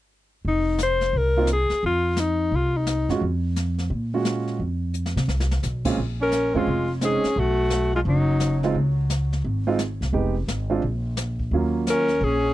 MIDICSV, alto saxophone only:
0, 0, Header, 1, 2, 480
1, 0, Start_track
1, 0, Tempo, 346220
1, 622, Time_signature, 4, 2, 24, 8
1, 17380, End_track
2, 0, Start_track
2, 0, Title_t, "Alto saxophone"
2, 0, Program_c, 0, 65
2, 664, Note_on_c, 0, 63, 69
2, 1091, Note_off_c, 0, 63, 0
2, 1146, Note_on_c, 0, 72, 82
2, 1624, Note_on_c, 0, 70, 72
2, 1645, Note_off_c, 0, 72, 0
2, 2084, Note_off_c, 0, 70, 0
2, 2120, Note_on_c, 0, 68, 74
2, 2540, Note_off_c, 0, 68, 0
2, 2579, Note_on_c, 0, 65, 69
2, 3046, Note_on_c, 0, 63, 67
2, 3067, Note_off_c, 0, 65, 0
2, 3546, Note_on_c, 0, 65, 61
2, 3567, Note_off_c, 0, 63, 0
2, 3837, Note_on_c, 0, 63, 58
2, 3858, Note_off_c, 0, 65, 0
2, 4305, Note_off_c, 0, 63, 0
2, 8635, Note_on_c, 0, 70, 83
2, 9121, Note_on_c, 0, 65, 69
2, 9142, Note_off_c, 0, 70, 0
2, 9584, Note_off_c, 0, 65, 0
2, 9773, Note_on_c, 0, 68, 73
2, 10255, Note_on_c, 0, 66, 80
2, 10275, Note_off_c, 0, 68, 0
2, 11025, Note_off_c, 0, 66, 0
2, 11032, Note_on_c, 0, 65, 56
2, 11102, Note_off_c, 0, 65, 0
2, 11220, Note_on_c, 0, 63, 64
2, 11934, Note_off_c, 0, 63, 0
2, 16500, Note_on_c, 0, 70, 90
2, 16968, Note_on_c, 0, 68, 77
2, 16989, Note_off_c, 0, 70, 0
2, 17380, Note_off_c, 0, 68, 0
2, 17380, End_track
0, 0, End_of_file